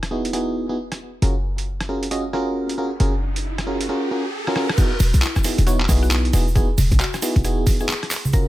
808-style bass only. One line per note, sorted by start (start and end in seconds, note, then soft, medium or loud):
0.00 1.20 E1 medium
1.22 2.98 F#1 medium
3.00 3.89 F#1 medium
5.00 5.12 E1 loud
5.14 5.21 B1 medium
5.58 5.87 E1 medium
5.89 6.32 B1 loud
6.33 6.76 E1 medium
6.78 6.90 E1 medium
6.92 6.99 B1 medium
7.36 7.65 E1 medium